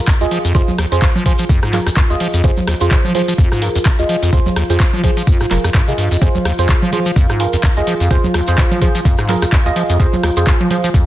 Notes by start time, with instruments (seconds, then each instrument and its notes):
Already playing: analog synth pad F4
0.08 acid bass G2, kick, clap, closed hi-hat, shekere
0.21 acid bass D#2, synth stab F4 G#4 D#5, shekere
0.31 acid bass F3, open hi-hat
0.45 acid bass F2, closed hi-hat, shekere
0.55 acid bass F2, synth stab F4 G#4 C5, kick, closed hi-hat, shekere
0.68 acid bass D#2, low conga, shekere
0.78 acid bass D#2, cross-stick, open hi-hat
0.92 acid bass F2, synth stab F4 G#4 C5, closed hi-hat, shekere
1.02 acid bass G2, kick, clap, closed hi-hat, shekere
1.16 acid bass F3, low conga, shekere
1.26 acid bass F3, synth stab F4 G#4 C5, kick, open hi-hat
1.38 acid bass F3, closed hi-hat, shekere
1.49 acid bass F2, kick, closed hi-hat, shekere
1.63 acid bass G#2, cross-stick, shekere
1.73 acid bass G2, synth stab F4 G#4 A#4, clap, open hi-hat, low conga
1.87 acid bass F2, cross-stick, closed hi-hat, shekere
1.97 acid bass G2, kick, clap, closed hi-hat, shekere
2.10 acid bass D#2, synth stab F4 G#4 D#5, shekere
2.20 acid bass F3, open hi-hat
2.33 acid bass F2, closed hi-hat, shekere
2.44 acid bass F2, synth stab F4 G#4 C5, kick, closed hi-hat, shekere
2.57 acid bass D#2, low conga, shekere
2.67 acid bass D#2, cross-stick, open hi-hat
2.81 acid bass F2, synth stab F4 G#4 C5, closed hi-hat, shekere
2.90 acid bass G2, kick, clap, closed hi-hat, shekere
3.05 acid bass F3, low conga, shekere
3.15 acid bass F3, synth stab F4 G#4 C5, open hi-hat, low conga
3.28 acid bass F3, closed hi-hat, shekere
3.38 acid bass F2, kick, closed hi-hat, shekere
3.52 acid bass G#2, cross-stick, shekere
3.62 acid bass G2, synth stab F4 G#4 A#4, open hi-hat
3.75 acid bass F2, closed hi-hat, shekere
3.85 acid bass G2, kick, clap, closed hi-hat, shekere
3.99 acid bass D#2, synth stab F4 G#4 D#5, shekere
4.09 acid bass F3, open hi-hat
4.23 acid bass F2, closed hi-hat, shekere
4.33 acid bass F2, synth stab F4 G#4 C5, kick, closed hi-hat, shekere
4.46 acid bass D#2, low conga, shekere
4.56 acid bass D#2, cross-stick, open hi-hat
4.70 acid bass F2, synth stab F4 G#4 C5, closed hi-hat, shekere
4.80 acid bass G2, kick, clap, closed hi-hat, shekere
4.93 acid bass F3, low conga, shekere
5.04 acid bass F3, synth stab F4 G#4 C5, kick, open hi-hat
5.17 acid bass F3, closed hi-hat, shekere
5.27 acid bass F2, kick, closed hi-hat, shekere
5.40 acid bass G#2, cross-stick, shekere
5.51 acid bass F1, synth stab F4 G#4 A#4, clap, open hi-hat, low conga
5.64 acid bass F2, cross-stick, closed hi-hat, shekere
5.74 acid bass G2, kick, clap, closed hi-hat, shekere
5.88 acid bass C3, synth stab F4 G#4 D#5, shekere
5.98 acid bass G2, open hi-hat
6.11 acid bass F2, closed hi-hat, shekere
6.21 acid bass F2, synth stab F4 G#4 C5, kick, closed hi-hat, shekere
6.35 acid bass D#2, low conga, shekere
6.45 acid bass D#2, cross-stick, open hi-hat
6.58 acid bass F2, synth stab F4 G#4 C5, closed hi-hat, shekere
6.69 kick, clap, closed hi-hat, shekere
6.82 acid bass F3, low conga, shekere
6.92 acid bass F3, synth stab F4 G#4 C5, open hi-hat, low conga
7.06 acid bass F3, closed hi-hat, shekere
7.16 acid bass F2, kick, closed hi-hat, shekere
7.30 acid bass G#2, cross-stick, shekere
7.40 acid bass G2, synth stab F4 G#4 A#4, open hi-hat
7.53 acid bass F2, closed hi-hat, shekere
7.63 acid bass G2, kick, clap, closed hi-hat, shekere
7.77 acid bass D#2, synth stab F4 G#4 D#5, shekere
7.87 acid bass F3, open hi-hat
8.00 acid bass F2, closed hi-hat, shekere
8.11 acid bass F2, synth stab F4 G#4 C5, kick, closed hi-hat, shekere
8.24 acid bass D#2, low conga, shekere
8.34 acid bass D#2, cross-stick, open hi-hat
8.47 acid bass F2, synth stab F4 G#4 C5, closed hi-hat, shekere
8.58 kick, clap, closed hi-hat, shekere
8.71 acid bass F3, low conga, shekere
8.81 acid bass F3, synth stab F4 G#4 C5, kick, open hi-hat
8.95 acid bass F3, closed hi-hat, shekere
9.05 acid bass F2, kick, closed hi-hat, shekere
9.18 acid bass G#2, cross-stick, shekere
9.29 acid bass G2, synth stab F4 G#4 A#4, clap, open hi-hat, low conga
9.42 acid bass F2, cross-stick, closed hi-hat, shekere
9.52 acid bass G2, kick, clap, closed hi-hat, shekere
9.66 acid bass D#2, synth stab F4 G#4 D#5, shekere
9.76 acid bass F3, open hi-hat
9.89 acid bass F2, closed hi-hat, shekere
10.00 synth stab F4 G#4 C5, kick, closed hi-hat, shekere
10.13 acid bass D#2, low conga, shekere
10.23 acid bass D#2, cross-stick, open hi-hat
10.37 acid bass F2, synth stab F4 G#4 C5, closed hi-hat, shekere
10.47 acid bass G2, kick, clap, closed hi-hat, shekere
10.60 acid bass F3, low conga, shekere
10.71 acid bass F3, synth stab F4 G#4 C5, open hi-hat, low conga
10.84 acid bass F3, closed hi-hat, shekere
10.94 acid bass F2, kick, closed hi-hat, shekere